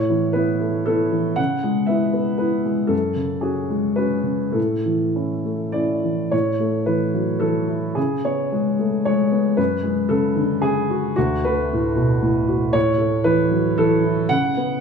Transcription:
upright piano
Already playing: A2 C#5
0.10 E3
0.33 B3 E4 B4
0.60 A3
0.86 B3 E4 A4
1.12 E3
1.36 C#3 F#5
1.64 G#3
1.86 B3 E4 E5
2.13 B3
2.38 B3 E4 B4
2.65 G#3
2.87 F#2 A4
3.16 C#3
3.41 C#4 F#4 G#4
3.70 G#3
3.96 C#4 F#4 B4
4.23 C#3
4.52 A2 A4
4.86 E3
5.16 C#4 E4
5.45 A3
5.72 C#4 E4 D5
6.04 E3
6.31 A2 C#5
6.59 A3
6.86 E3 B4
7.14 F#3
7.40 E3 A4
7.68 E4
7.95 C#3 G#4
8.25 B3 C#5
8.52 G#3
8.79 A3
9.05 G#3 C#5
9.31 B3
9.57 F#2 B4
9.83 G#3
10.09 C#3 A4
10.36 D3
10.62 C#3 G#4
10.90 F#4
11.16 D2 F#4
11.45 A3 B4
11.73 A2
11.96 B2
12.22 A2
12.48 F#4
12.73 A2 C#5
12.97 A3
13.24 E3 B4
13.51 F#3
13.78 E3 A4
14.04 E4
14.29 C#3 F#5
14.57 B3

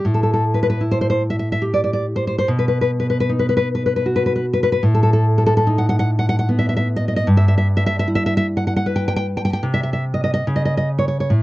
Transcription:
nylon-string guitar
0.05 A2
0.14 A4
0.23 A4
0.34 A4
0.54 B4
0.63 B4
0.70 B4
0.81 E4
0.91 C5
1.01 C5
1.10 C5
1.30 E5
1.39 E5
1.52 E5
1.62 G4
1.74 D5
1.84 D5
1.93 D5
2.16 C5
2.27 C5
2.38 C5
2.48 B2
2.59 B4
2.68 B4
2.81 B4
3.00 B4
3.10 B4
3.20 B4
3.29 D#4
3.39 B4
3.49 B4
3.57 B4
3.75 B4
3.86 B4
3.96 B4
4.06 F#4
4.16 B4
4.26 B4
4.36 B4
4.53 B4
4.63 B4
4.72 B4
4.83 A2
4.94 A4
5.03 A4
5.13 A4
5.38 A4
5.46 A4
5.57 A4
5.67 D#4
5.78 F#5
5.89 F#5
5.99 F#5
6.19 F#5
6.29 F#5
6.39 F#5
6.49 B3
6.59 E5
6.69 E5
6.77 E5
6.96 D#5
7.08 D#5
7.16 D#5
7.27 G2
7.37 E5
7.48 E5
7.58 E5
7.77 E5
7.86 E5
7.99 E5
8.08 E4
8.15 E5
8.26 E5
8.37 E5
8.57 F#5
8.67 F#5
8.76 F#5
8.86 B4
8.96 G5
9.08 G5
9.16 G5
9.37 G5
9.45 G5
9.53 G5
9.63 C3
9.74 E5
9.83 E5
9.93 E5
10.14 D#5
10.24 D#5
10.34 D#5
10.47 C#3
10.56 D#5
10.65 D#5
10.77 D#5
10.99 C#5
11.08 C#5
11.20 C#5
11.30 A2

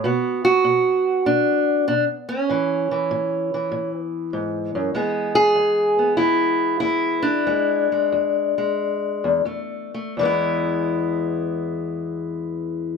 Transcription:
steel-string acoustic guitar
0.04 B2 B3 F#4
0.45 F#4
0.64 B2
1.26 B2 D4
1.88 B2 D4
2.29 C#4
2.49 A2 E3
2.91 E3
3.11 A2
3.54 E3
3.72 A2
4.00 B3
4.33 G#2
4.75 F#2
4.94 E2 G#3 B3 G#4
5.35 G#4
5.55 E2
5.99 B3
6.17 E2 E4
6.80 E2 E4
7.22 D4
7.47 E2 G#3
7.92 G#3
8.12 E2
8.58 G#3
9.24 E2
9.45 F2 A3
9.94 A3
10.17 E2 E3 G#3
10.23 B3 E4

